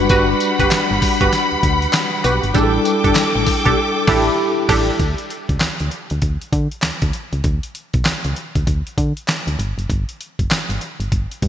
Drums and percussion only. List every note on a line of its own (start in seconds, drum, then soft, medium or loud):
0.09 kick loud
0.09 closed hi-hat medium
0.09 tambourine medium
0.40 closed hi-hat medium
0.40 tambourine medium
0.60 kick medium
0.60 closed hi-hat medium
0.71 snare loud
0.71 clap loud
0.71 closed hi-hat medium
0.71 tambourine loud
1.02 kick loud
1.02 open hi-hat medium
1.02 tambourine medium
1.21 kick medium
1.21 closed hi-hat medium
1.33 snare medium
1.33 closed hi-hat medium
1.33 tambourine medium
1.63 kick medium
1.63 closed hi-hat medium
1.82 closed hi-hat soft
1.93 snare loud
1.93 clap medium
1.93 closed hi-hat medium
1.93 tambourine medium
2.24 closed hi-hat medium
2.24 tambourine medium
2.44 closed hi-hat medium
2.54 kick loud
2.54 closed hi-hat medium
2.54 tambourine medium
2.85 closed hi-hat medium
2.85 tambourine medium
3.04 kick medium
3.04 closed hi-hat medium
3.15 snare loud
3.15 clap medium
3.15 closed hi-hat medium
3.15 tambourine loud
3.46 kick loud
3.46 open hi-hat medium
3.46 tambourine medium
3.66 kick medium
3.66 closed hi-hat medium
4.07 kick loud
4.07 snare loud
4.07 crash medium
4.69 kick loud
4.69 snare loud
4.69 crash medium
4.99 kick loud
4.99 closed hi-hat medium
5.18 closed hi-hat medium
5.30 closed hi-hat medium
5.49 kick medium
5.49 closed hi-hat soft
5.61 snare loud
5.61 clap medium
5.61 closed hi-hat medium
5.80 closed hi-hat soft
5.91 closed hi-hat medium
6.10 closed hi-hat medium
6.22 kick medium
6.22 closed hi-hat medium
6.42 closed hi-hat soft
6.53 kick medium
6.53 closed hi-hat medium
6.72 closed hi-hat soft
6.82 snare loud
6.82 clap medium
6.82 closed hi-hat medium
7.02 kick medium
7.02 closed hi-hat medium
7.13 closed hi-hat medium
7.33 closed hi-hat soft
7.44 kick loud
7.44 closed hi-hat medium
7.63 closed hi-hat medium
7.75 closed hi-hat medium
7.94 kick medium
7.94 closed hi-hat soft
8.05 snare loud
8.05 clap medium
8.05 closed hi-hat medium
8.24 closed hi-hat soft
8.36 closed hi-hat medium
8.55 kick medium
8.55 closed hi-hat soft
8.67 kick medium
8.67 closed hi-hat medium
8.87 closed hi-hat soft
8.98 kick medium
8.98 closed hi-hat medium
9.17 closed hi-hat soft
9.28 snare loud
9.28 clap medium
9.28 closed hi-hat medium
9.48 closed hi-hat medium
9.59 closed hi-hat medium
9.79 closed hi-hat soft
9.90 kick loud
9.90 closed hi-hat medium
10.09 closed hi-hat medium
10.21 closed hi-hat medium
10.39 kick medium
10.39 closed hi-hat soft
10.51 snare loud
10.51 clap loud
10.51 closed hi-hat medium
10.70 closed hi-hat medium
10.81 closed hi-hat medium
11.00 closed hi-hat soft
11.12 kick medium
11.12 closed hi-hat medium
11.32 closed hi-hat soft
11.42 kick medium
11.42 closed hi-hat medium